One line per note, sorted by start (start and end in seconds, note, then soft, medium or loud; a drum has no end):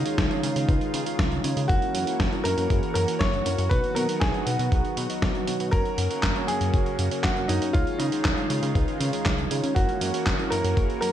0.00 1.67 D#3 medium
0.00 1.67 G#3 medium
0.00 3.67 C#4 medium
0.00 0.89 D#4 medium
0.00 1.67 F4 medium
0.06 0.28 D#4 medium
0.06 0.28 F4 medium
0.06 0.28 G#4 medium
0.06 0.28 C#5 loud
0.06 closed hi-hat medium
0.18 0.29 C#2 medium
0.18 kick loud
0.18 snare loud
0.18 closed hi-hat medium
0.31 0.66 D#4 medium
0.31 0.66 F4 medium
0.31 0.66 G#4 medium
0.31 0.66 C#5 loud
0.31 closed hi-hat soft
0.43 0.54 C#3 medium
0.43 closed hi-hat medium
0.56 0.66 C#3 medium
0.56 closed hi-hat medium
0.69 0.79 C#2 loud
0.69 1.03 D#4 medium
0.69 1.03 F4 medium
0.69 1.03 G#4 medium
0.69 1.03 B4 medium
0.69 kick loud
0.69 closed hi-hat medium
0.81 closed hi-hat soft
0.94 1.04 C#3 medium
0.94 closed hi-hat medium
1.06 1.41 D#4 loud
1.06 1.41 F4 medium
1.06 1.41 G#4 medium
1.06 1.41 C#5 loud
1.06 closed hi-hat medium
1.19 1.40 C#2 medium
1.19 kick loud
1.19 snare loud
1.19 closed hi-hat medium
1.32 closed hi-hat soft
1.44 1.55 C#3 medium
1.44 1.66 D#4 medium
1.44 1.66 F4 medium
1.44 1.66 G#4 medium
1.44 1.66 C#5 loud
1.44 closed hi-hat medium
1.57 1.67 C#3 medium
1.57 closed hi-hat medium
1.68 1.80 F#1 loud
1.68 3.69 E3 medium
1.68 3.69 A#3 medium
1.68 2.04 C#4 loud
1.68 2.16 F#4 loud
1.68 2.04 F#4 medium
1.68 7.71 F#4 medium
1.68 2.04 A#4 loud
1.68 kick loud
1.68 closed hi-hat medium
1.82 closed hi-hat soft
1.95 2.05 F#2 loud
1.95 closed hi-hat medium
2.07 2.29 C#4 medium
2.07 2.29 E4 medium
2.07 2.29 F#4 medium
2.07 2.29 A#4 medium
2.07 closed hi-hat soft
2.20 2.30 F#1 medium
2.20 kick loud
2.20 snare loud
2.20 closed hi-hat soft
2.32 2.67 C#4 medium
2.32 2.67 E4 medium
2.32 2.67 F#4 medium
2.32 2.67 A#4 loud
2.32 closed hi-hat soft
2.44 2.55 F#2 medium
2.44 2.92 A#4 loud
2.44 closed hi-hat medium
2.58 2.68 F#2 medium
2.58 closed hi-hat medium
2.70 2.81 F#1 loud
2.70 3.05 C#4 medium
2.70 3.05 E4 medium
2.70 3.05 F#4 medium
2.70 3.05 G#4 medium
2.70 kick loud
2.70 closed hi-hat medium
2.83 closed hi-hat soft
2.94 3.06 F#2 medium
2.94 3.21 A#4 loud
2.94 closed hi-hat medium
3.08 3.43 C#4 loud
3.08 3.43 E4 medium
3.08 3.43 F#4 medium
3.08 3.43 A#4 loud
3.08 closed hi-hat soft
3.19 3.42 F#1 medium
3.19 3.72 C#5 loud
3.19 kick loud
3.19 snare loud
3.19 closed hi-hat medium
3.33 closed hi-hat soft
3.46 3.56 F#2 medium
3.46 3.67 C#4 medium
3.46 3.67 E4 medium
3.46 3.67 F#4 medium
3.46 3.67 A#4 loud
3.46 closed hi-hat medium
3.58 3.69 F#2 medium
3.58 closed hi-hat medium
3.69 3.82 B1 loud
3.69 5.71 D#3 medium
3.69 7.70 F#3 medium
3.69 4.06 B3 medium
3.69 5.71 B3 medium
3.69 4.06 D#4 medium
3.69 4.06 F#4 medium
3.69 3.96 B4 loud
3.69 4.06 B4 loud
3.69 kick loud
3.69 closed hi-hat medium
3.84 closed hi-hat soft
3.95 4.07 B2 loud
3.95 4.22 A#4 medium
3.95 closed hi-hat medium
4.09 4.31 B3 medium
4.09 4.31 D#4 medium
4.09 4.31 F#4 medium
4.09 4.31 B4 medium
4.09 closed hi-hat soft
4.20 4.32 B1 medium
4.20 4.44 G#4 loud
4.20 kick loud
4.20 snare loud
4.20 closed hi-hat soft
4.34 4.69 B3 loud
4.34 4.69 D#4 medium
4.34 4.69 F#4 medium
4.34 4.69 B4 loud
4.34 closed hi-hat soft
4.45 4.57 B2 medium
4.45 5.43 F#4 medium
4.45 closed hi-hat medium
4.59 4.70 B2 medium
4.59 closed hi-hat soft
4.72 4.82 B1 loud
4.72 5.07 B3 medium
4.72 5.07 D#4 medium
4.72 5.07 F#4 medium
4.72 5.07 G#4 medium
4.72 kick loud
4.72 closed hi-hat soft
4.85 closed hi-hat soft
4.97 5.08 B2 loud
4.97 closed hi-hat medium
5.10 5.45 B3 medium
5.10 5.45 D#4 medium
5.10 5.45 F#4 medium
5.10 5.45 D#5 medium
5.10 closed hi-hat soft
5.22 5.33 B1 loud
5.22 kick loud
5.22 snare loud
5.22 closed hi-hat soft
5.35 closed hi-hat soft
5.47 5.58 B2 medium
5.47 5.70 B3 medium
5.47 5.70 D#4 medium
5.47 5.70 F#4 medium
5.47 5.70 C#5 medium
5.47 closed hi-hat medium
5.60 5.71 B2 medium
5.60 closed hi-hat soft
5.71 5.83 F#1 loud
5.71 7.72 C#3 medium
5.71 7.72 A#3 medium
5.71 6.08 C#4 loud
5.71 6.08 F#4 medium
5.71 6.44 A#4 loud
5.71 6.08 A#4 medium
5.71 6.08 C#5 loud
5.71 kick loud
5.71 closed hi-hat medium
5.85 closed hi-hat soft
5.98 6.08 F#2 loud
5.98 closed hi-hat medium
6.11 6.33 C#4 medium
6.11 6.33 F#4 medium
6.11 6.33 A#4 medium
6.11 6.33 C#5 loud
6.11 closed hi-hat soft
6.23 6.34 F#1 medium
6.23 kick loud
6.23 snare loud
6.23 clap medium
6.23 closed hi-hat soft
6.36 6.71 C#4 medium
6.36 6.71 F#4 medium
6.36 6.71 A#4 medium
6.36 6.71 C#5 loud
6.36 closed hi-hat soft
6.47 6.59 F#2 medium
6.47 7.26 G#4 loud
6.47 closed hi-hat medium
6.61 6.71 F#2 medium
6.61 closed hi-hat soft
6.74 6.84 F#1 loud
6.74 7.08 C#4 medium
6.74 7.08 F#4 medium
6.74 7.08 A#4 medium
6.74 7.08 C#5 medium
6.74 kick loud
6.74 closed hi-hat soft
6.86 closed hi-hat soft
6.99 7.09 F#2 medium
6.99 closed hi-hat medium
7.11 7.46 C#4 medium
7.11 7.46 F#4 medium
7.11 7.46 A#4 medium
7.11 7.46 C#5 loud
7.11 closed hi-hat soft
7.23 7.45 F#1 medium
7.23 7.49 F#4 medium
7.23 kick loud
7.23 snare loud
7.23 clap medium
7.23 closed hi-hat soft
7.37 closed hi-hat soft
7.48 7.60 F#2 medium
7.48 7.71 C#4 medium
7.48 7.75 D#4 medium
7.48 7.71 F#4 medium
7.48 7.71 A#4 medium
7.48 7.71 C#5 loud
7.48 closed hi-hat medium
7.62 7.72 F#2 medium
7.62 closed hi-hat soft
7.73 7.85 C#2 loud
7.73 9.74 D#3 medium
7.73 9.74 G#3 medium
7.73 11.12 C#4 medium
7.73 8.09 D#4 medium
7.73 8.00 F4 loud
7.73 8.09 F4 medium
7.73 9.74 F4 loud
7.73 8.09 G#4 medium
7.73 8.09 C#5 loud
7.73 kick loud
7.73 closed hi-hat medium
7.87 closed hi-hat soft
7.98 8.10 C#3 loud
7.98 8.96 D#4 medium
7.98 closed hi-hat medium
8.12 8.34 D#4 medium
8.12 8.34 F4 medium
8.12 8.34 G#4 medium
8.12 8.34 C#5 loud
8.12 closed hi-hat soft
8.25 8.35 C#2 medium
8.25 kick loud
8.25 snare loud
8.25 clap medium
8.25 closed hi-hat soft
8.37 8.72 D#4 loud
8.37 8.72 F4 medium
8.37 8.72 G#4 medium
8.37 8.72 C#5 loud
8.37 closed hi-hat soft
8.50 8.61 C#3 medium
8.50 closed hi-hat medium
8.63 8.73 C#3 medium
8.63 closed hi-hat medium
8.75 8.86 C#2 loud
8.75 9.10 D#4 medium
8.75 9.10 F4 medium
8.75 9.10 G#4 medium
8.75 9.10 B4 medium
8.75 kick loud
8.75 closed hi-hat medium
8.88 closed hi-hat soft
9.00 9.11 C#3 medium
9.00 closed hi-hat medium
9.13 9.48 D#4 loud
9.13 9.48 F4 medium
9.13 9.48 G#4 medium
9.13 9.48 C#5 loud
9.13 closed hi-hat medium
9.26 9.47 C#2 medium
9.26 kick loud
9.26 snare loud
9.26 clap medium
9.26 closed hi-hat medium
9.38 closed hi-hat soft
9.51 9.61 C#3 medium
9.51 9.72 D#4 medium
9.51 9.72 F4 medium
9.51 9.72 G#4 medium
9.51 9.72 C#5 loud
9.51 closed hi-hat medium
9.64 9.74 C#3 medium
9.64 closed hi-hat medium
9.75 9.87 F#1 loud
9.75 11.12 E3 medium
9.75 11.12 A#3 medium
9.75 10.11 C#4 medium
9.75 10.11 E4 medium
9.75 10.53 F#4 medium
9.75 10.11 F#4 medium
9.75 11.12 F#4 medium
9.75 10.11 A#4 loud
9.75 kick loud
9.75 closed hi-hat medium
9.89 closed hi-hat soft
10.01 10.12 F#2 medium
10.01 closed hi-hat medium
10.14 10.36 C#4 medium
10.14 10.36 E4 medium
10.14 10.36 F#4 medium
10.14 10.36 A#4 medium
10.14 closed hi-hat medium
10.27 10.37 F#1 medium
10.27 kick loud
10.27 snare loud
10.27 clap loud
10.27 closed hi-hat medium
10.39 10.74 C#4 medium
10.39 10.74 E4 medium
10.39 10.74 F#4 medium
10.39 10.74 A#4 loud
10.39 closed hi-hat soft
10.50 10.62 F#2 medium
10.50 10.99 A#4 loud
10.50 closed hi-hat loud
10.64 10.75 F#2 medium
10.64 closed hi-hat medium
10.77 10.87 F#1 loud
10.77 11.12 C#4 medium
10.77 11.12 E4 medium
10.77 11.12 F#4 medium
10.77 11.12 G#4 loud
10.77 kick loud
10.77 closed hi-hat medium
10.90 closed hi-hat soft
11.01 11.12 F#2 medium
11.01 11.12 A#4 loud
11.01 closed hi-hat medium